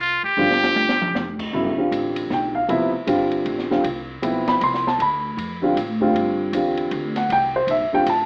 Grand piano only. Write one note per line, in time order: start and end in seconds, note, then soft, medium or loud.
0.37 1.45 D3 medium
0.37 1.45 G3 medium
0.37 1.45 C4 medium
0.37 1.45 F4 medium
1.53 1.75 C#3 medium
1.53 1.75 F#3 soft
1.53 1.76 B3 soft
1.53 1.76 E4 medium
1.77 2.60 D3 medium
1.77 2.60 G3 soft
1.77 2.61 C4 soft
1.77 2.61 F4 medium
2.33 2.56 G5 medium
2.55 2.69 F5 medium
2.68 2.91 C3 medium
2.68 2.91 F3 medium
2.68 2.91 B3 medium
2.68 2.92 E4 medium
2.68 3.81 E5 medium
3.07 3.65 D3 medium
3.07 3.66 G3 medium
3.07 3.66 C4 medium
3.07 3.66 F4 medium
3.70 3.83 D3 medium
3.70 3.83 G3 medium
3.70 3.84 C4 soft
3.70 3.84 F4 medium
4.22 4.81 F3 soft
4.22 4.81 B3 medium
4.22 4.81 C4 medium
4.22 4.81 E4 medium
4.48 4.62 B5 medium
4.64 4.86 C6 medium
4.88 5.00 A5 medium
5.02 5.60 B5 medium
5.62 5.75 D3 medium
5.62 5.75 G3 medium
5.62 5.76 C4 medium
5.62 5.76 F4 medium
6.00 6.50 D3 medium
6.00 6.51 G3 medium
6.00 6.51 C4 medium
6.00 6.51 F4 medium
6.54 7.11 D3 medium
6.54 7.12 G3 soft
6.54 7.12 C4 medium
6.54 7.12 F4 medium
7.17 7.30 F#5 medium
7.32 7.55 G5 loud
7.56 7.69 C5 medium
7.71 7.93 E5 medium
7.93 8.05 D3 medium
7.93 8.06 G3 medium
7.93 8.06 C4 soft
7.93 8.06 F4 medium
7.93 8.07 G5 medium
8.10 8.26 A5 medium